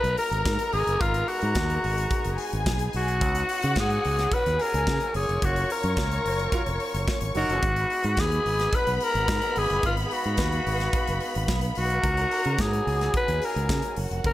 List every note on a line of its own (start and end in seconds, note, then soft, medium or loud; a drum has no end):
0.00 0.14 B1 medium
0.00 3.17 G#3 medium
0.00 3.17 B3 medium
0.00 5.10 D#4 medium
0.00 0.98 F#4 medium
0.00 2.35 A#4 loud
0.00 0.18 B4 loud
0.00 2.35 A#5 loud
0.00 closed hi-hat soft
0.17 0.75 A#4 loud
0.17 open hi-hat medium
0.31 0.42 G#1 loud
0.31 closed hi-hat soft
0.45 0.56 G#2 loud
0.45 kick loud
0.45 snare loud
0.45 closed hi-hat medium
0.59 closed hi-hat medium
0.73 0.84 G#1 loud
0.73 1.03 G#4 loud
0.73 open hi-hat medium
0.87 0.97 F#1 loud
0.87 closed hi-hat soft
1.01 1.22 G#1 loud
1.01 1.30 F4 loud
1.01 3.20 G#4 medium
1.01 kick loud
1.01 closed hi-hat medium
1.14 closed hi-hat medium
1.28 2.67 F#4 medium
1.28 open hi-hat medium
1.42 1.53 G#2 loud
1.42 closed hi-hat soft
1.55 1.77 D#2 medium
1.55 kick loud
1.55 snare loud
1.55 closed hi-hat medium
1.70 closed hi-hat soft
1.84 2.05 G#1 loud
1.84 open hi-hat medium
1.98 closed hi-hat soft
2.10 kick loud
2.10 closed hi-hat medium
2.24 2.36 F#1 medium
2.24 closed hi-hat soft
2.38 3.20 G#4 medium
2.38 3.20 G#5 medium
2.38 open hi-hat medium
2.53 2.63 G#1 loud
2.53 closed hi-hat soft
2.66 2.87 B1 medium
2.66 kick loud
2.66 snare loud
2.66 closed hi-hat medium
2.79 closed hi-hat medium
2.93 3.21 B1 medium
2.93 3.81 F#4 loud
2.93 open hi-hat medium
3.08 closed hi-hat soft
3.21 3.42 C#2 loud
3.21 5.12 C#3 medium
3.21 5.12 B3 medium
3.21 4.56 F#4 loud
3.21 5.12 F#4 medium
3.21 4.57 F#5 loud
3.21 kick loud
3.21 closed hi-hat medium
3.35 closed hi-hat medium
3.49 open hi-hat medium
3.62 3.74 C#3 loud
3.62 closed hi-hat soft
3.76 3.97 G#2 medium
3.76 kick loud
3.76 snare loud
3.76 closed hi-hat medium
3.80 4.35 G#4 loud
3.90 closed hi-hat soft
4.05 4.26 C#2 medium
4.05 open hi-hat medium
4.19 snare soft
4.19 closed hi-hat soft
4.31 4.63 B4 loud
4.31 kick loud
4.31 closed hi-hat medium
4.46 4.57 D#2 medium
4.46 closed hi-hat soft
4.59 5.14 G#4 medium
4.59 5.15 A#4 loud
4.59 5.14 G#5 loud
4.59 open hi-hat medium
4.74 4.84 C#2 loud
4.74 closed hi-hat soft
4.87 4.98 C#3 medium
4.87 kick loud
4.87 snare loud
4.87 closed hi-hat medium
5.00 closed hi-hat medium
5.14 5.25 F#1 loud
5.14 7.60 F#3 medium
5.14 7.60 C#4 medium
5.14 7.60 F4 medium
5.14 5.46 G#4 loud
5.14 7.60 A#4 loud
5.14 7.59 C#5 medium
5.14 7.59 C#6 medium
5.14 open hi-hat medium
5.29 5.39 F1 medium
5.29 closed hi-hat soft
5.42 5.63 F#1 loud
5.42 5.71 F#4 loud
5.42 kick loud
5.42 closed hi-hat medium
5.56 closed hi-hat medium
5.70 7.05 A#4 medium
5.70 open hi-hat medium
5.83 5.94 F#2 loud
5.83 closed hi-hat soft
5.97 6.18 C#2 loud
5.97 kick loud
5.97 snare loud
5.97 closed hi-hat medium
6.11 closed hi-hat soft
6.26 6.46 F#1 medium
6.26 open hi-hat medium
6.39 closed hi-hat soft
6.52 6.61 F#3 medium
6.52 6.61 F4 loud
6.52 6.61 A#4 loud
6.52 kick loud
6.52 closed hi-hat medium
6.66 6.77 F1 medium
6.66 closed hi-hat soft
6.80 open hi-hat medium
6.94 7.04 F#1 loud
6.94 closed hi-hat soft
7.08 kick loud
7.08 snare loud
7.08 closed hi-hat medium
7.21 7.32 G#1 medium
7.21 closed hi-hat medium
7.35 7.46 F#1 loud
7.35 7.70 F#3 loud
7.35 7.70 D#4 loud
7.35 8.21 F#4 loud
7.35 7.70 A#4 loud
7.35 open hi-hat medium
7.49 7.59 F#1 medium
7.49 closed hi-hat soft
7.62 7.84 G#1 loud
7.62 12.00 G#3 medium
7.62 12.00 B3 loud
7.62 12.00 B3 medium
7.62 11.99 D#4 medium
7.62 9.81 F#4 medium
7.62 11.99 B5 loud
7.62 kick loud
7.62 closed hi-hat medium
7.76 closed hi-hat medium
7.90 open hi-hat medium
8.03 8.15 G#2 loud
8.03 closed hi-hat soft
8.17 8.39 D#2 loud
8.17 8.76 G#4 loud
8.17 kick loud
8.17 snare loud
8.17 closed hi-hat medium
8.32 closed hi-hat soft
8.46 8.66 G#1 medium
8.46 open hi-hat medium
8.60 snare soft
8.60 closed hi-hat medium
8.72 8.96 B4 loud
8.72 kick loud
8.72 closed hi-hat medium
8.87 8.97 B1 medium
8.87 closed hi-hat soft
8.96 9.05 B4 medium
9.00 9.60 A#4 loud
9.00 open hi-hat medium
9.15 9.25 G#1 loud
9.15 closed hi-hat soft
9.28 9.39 G#2 medium
9.28 kick loud
9.28 snare loud
9.28 closed hi-hat medium
9.41 closed hi-hat medium
9.56 9.67 G#1 loud
9.56 9.85 G#4 loud
9.56 open hi-hat medium
9.70 9.81 F#1 loud
9.70 closed hi-hat soft
9.83 10.04 G#1 loud
9.83 9.94 F4 loud
9.83 12.02 F5 medium
9.83 kick loud
9.83 closed hi-hat medium
9.97 closed hi-hat soft
10.06 10.14 G#4 medium
10.11 11.50 F#4 medium
10.11 open hi-hat medium
10.24 10.36 G#2 medium
10.24 closed hi-hat soft
10.37 10.59 D#2 medium
10.37 kick loud
10.37 snare loud
10.37 closed hi-hat medium
10.52 closed hi-hat soft
10.66 10.87 G#1 loud
10.66 open hi-hat medium
10.80 snare soft
10.80 closed hi-hat soft
10.93 kick loud
10.93 closed hi-hat medium
11.07 11.18 F#1 medium
11.07 closed hi-hat soft
11.20 open hi-hat medium
11.35 11.46 G#1 loud
11.35 closed hi-hat soft
11.48 11.69 B1 loud
11.48 kick loud
11.48 snare loud
11.48 closed hi-hat medium
11.61 closed hi-hat medium
11.75 11.98 B1 medium
11.75 12.62 F#4 loud
11.75 open hi-hat medium
11.90 closed hi-hat soft
12.03 12.25 C#2 loud
12.03 13.95 C#3 medium
12.03 13.95 B3 medium
12.03 13.95 D#4 medium
12.03 13.95 F#4 loud
12.03 12.84 A#4 loud
12.03 12.85 A#5 loud
12.03 kick loud
12.03 closed hi-hat medium
12.17 closed hi-hat medium
12.31 open hi-hat medium
12.45 12.56 C#3 loud
12.45 closed hi-hat soft
12.58 12.80 G#2 loud
12.58 13.15 G#4 medium
12.58 kick loud
12.58 snare loud
12.58 closed hi-hat medium
12.73 closed hi-hat soft
12.86 13.08 C#2 loud
12.86 13.94 G#4 medium
12.86 13.94 G#5 medium
12.86 open hi-hat medium
13.01 snare soft
13.01 closed hi-hat medium
13.14 13.46 B4 loud
13.14 kick loud
13.14 closed hi-hat medium
13.28 13.39 D#2 medium
13.28 closed hi-hat soft
13.42 13.98 A#4 loud
13.42 open hi-hat medium
13.56 13.66 C#2 loud
13.56 closed hi-hat soft
13.69 13.80 C#3 loud
13.69 kick loud
13.69 snare loud
13.69 closed hi-hat medium
13.82 closed hi-hat medium
13.96 14.08 F#1 loud
13.96 14.33 F#3 medium
13.96 14.33 C#4 medium
13.96 14.33 F#4 medium
13.96 14.33 A#4 medium
13.96 14.33 F#5 medium
13.96 open hi-hat medium
14.11 14.21 F1 medium
14.11 closed hi-hat soft
14.24 14.33 F#1 loud
14.24 14.33 A#4 loud
14.24 kick loud
14.24 closed hi-hat medium